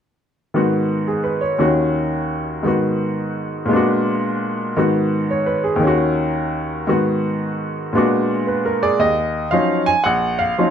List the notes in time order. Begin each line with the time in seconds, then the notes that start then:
0.54 G#2 D#3 B3 F#4
1.08 G#4
1.24 B4
1.41 C#5
1.58 D#2 D#3 C#4 F#4
2.63 G#2 D#3 B3
2.68 F#4
3.66 A#2 G#3
3.71 B3 D4
3.76 F#4
4.77 G#2 D#3 B3 F#4
5.31 C#5
5.46 B4
5.64 G#4
5.76 D#2 D#3
5.83 C#4
5.87 F#4
6.87 G#2 D#3 B3 F#4
7.93 A#2 G#3 B3 D4
7.98 F#4
8.47 B4
8.65 A#4
8.83 G#4 D5
8.99 D#2 D#5
9.51 F3 F#3 C#4 D#4 F5
9.86 G#5
10.04 A#1 F#5
10.39 F5
10.58 F3 F#3 C#4 D#4